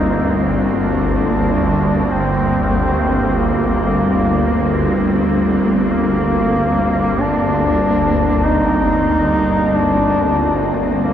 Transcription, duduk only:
Already playing: D#4
0.82 D4
2.12 C4
3.39 A#3
5.88 A#3
7.20 D4
8.45 D#4
9.74 D4
11.01 A#3

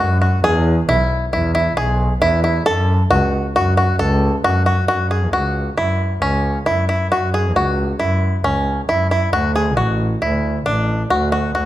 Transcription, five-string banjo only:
0.00 F#4
0.22 F#4
0.44 G#4
0.89 E4
1.33 E4
1.55 E4
1.77 G#4
2.22 E4
2.44 E4
2.66 A4
3.11 F#4
3.56 F#4
3.77 F#4
3.99 A4
4.44 F#4
4.66 F#4
4.88 F#4
5.11 G#4
5.33 F#4
5.78 E4
6.22 C#4
6.66 E4
6.89 E4
7.12 F#4
7.34 G#4
7.56 F#4
7.99 E4
8.44 C#4
8.89 E4
9.11 E4
9.33 F#4
9.56 G#4
9.77 F#4
10.22 E4
10.66 D4
11.10 F#4
11.32 F#4
11.55 F#4

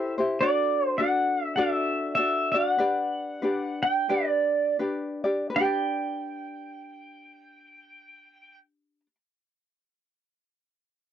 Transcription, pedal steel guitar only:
Already playing: E5
0.41 D5
0.87 C5
0.98 F#5
1.45 E5
1.56 F5
1.73 E5
2.15 E5
2.52 F5
2.70 F#5
3.83 G5
4.10 D5
5.56 G5

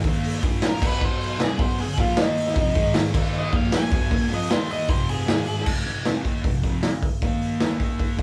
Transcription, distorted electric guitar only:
0.05 D#3 A#3 D#4
0.42 A#2 F3 A#3
0.80 B2 F#3 B3
1.38 C3 G3 C4
1.58 B2 F#3 B3
1.78 muted distorted electric guitar stroke
1.97 A#2 F3 A#3
2.17 D#3 A#3 D#4
2.55 F2 C3 F3
2.74 G#2 D#3 G#3
3.13 D#3 A#3 D#4
3.53 A#2 F3 A#3
3.91 B2 F#3 B3
4.10 A#2 F3 A#3
4.29 F3 C4 F4
4.50 D#3 A#3 D#4
4.88 F2 C3 F3
5.27 G#2 D#3 G#3
5.67 F2 C3
5.86 F2 C3
6.05 F2 C3 F3
6.25 D#3 A#3 D#4
6.45 F2 C3
6.63 F2 C3 F3
7.22 D#3 A#3 D#4
7.79 D#3 A#3 D#4
8.18 C3 G3

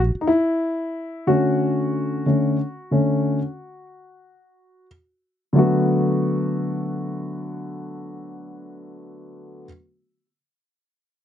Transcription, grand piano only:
0.21 D#4
0.27 E4
1.27 D3 A3 C#4 F#4
2.26 D3 A3 C#4
2.91 D3 A3 C#4
5.53 D3 F#3 A3
5.57 B3 F#4

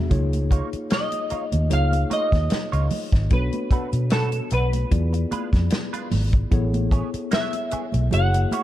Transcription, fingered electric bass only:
0.11 C#2
0.73 muted fingered electric bass stroke
1.32 muted fingered electric bass stroke
1.53 D#2
1.72 C#2
2.33 D#2
2.51 muted fingered electric bass stroke
2.73 C#2
3.13 G#1
3.31 B1
3.71 muted fingered electric bass stroke
3.93 B2
4.52 B1
4.92 E2
5.32 muted fingered electric bass stroke
5.53 F2
6.12 G#1
6.52 A1
7.14 muted fingered electric bass stroke
7.73 muted fingered electric bass stroke
7.94 B1
8.13 F#1

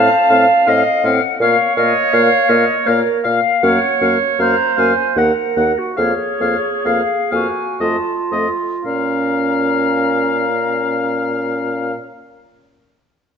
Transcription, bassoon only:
0.30 A2
0.67 A2
1.04 A2
1.40 A#2
1.77 A#2
2.13 A#2
2.49 A#2
2.87 A#2
3.25 A#2
3.63 F#2
4.01 F#2
4.39 F#2
4.78 F#2
5.16 D#2
5.56 D#2
5.98 F2
6.40 F2
6.85 F2
7.32 F2
7.80 F2
8.32 F2
8.85 A#2

